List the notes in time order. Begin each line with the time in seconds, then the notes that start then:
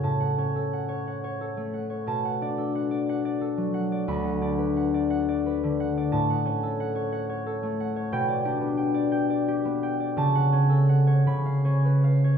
Already playing: C#4 A4 C#5 F#5
0.03 A2 A5
0.20 F#5
0.38 C#4 C#5
0.56 A4
0.73 F#5
0.89 C#5
1.07 F#5
1.24 C#5
1.41 A4
1.57 A3
1.74 F#5
1.90 C#5
2.07 B2 A5
2.25 F#5
2.41 D4 D5
2.58 A4
2.75 F#5
2.91 D5
3.09 F#5
3.25 D5
3.41 A4
3.57 F#3
3.74 F#5
3.92 D5
4.08 D2 B5
4.25 F#5
4.41 D4 D5
4.58 B4
4.77 F#5
4.94 D5
5.10 F#5
5.29 D5
5.46 B4
5.64 D3
5.80 F#5
5.97 D5
6.12 A2 A5
6.30 F#5
6.45 C#4 C#5
6.63 A4
6.80 F#5
6.95 C#5
7.12 F#5
7.29 C#5
7.46 A4
7.63 A3
7.80 F#5
7.96 C#5
8.12 B2 G5
8.28 D5
8.45 D4 G4
8.61 B3
8.77 G5
8.94 D5
9.12 G5
9.30 D5
9.48 G4
9.65 B3
9.83 G5
10.00 D5
10.17 C#3 A5
10.35 F#5
10.52 C#4 C#5
10.70 A4
10.89 F#5
11.07 C#5
11.26 C#3 B5
11.45 F5
11.65 C#4 C#5
11.85 B4
12.04 F5
12.24 C#5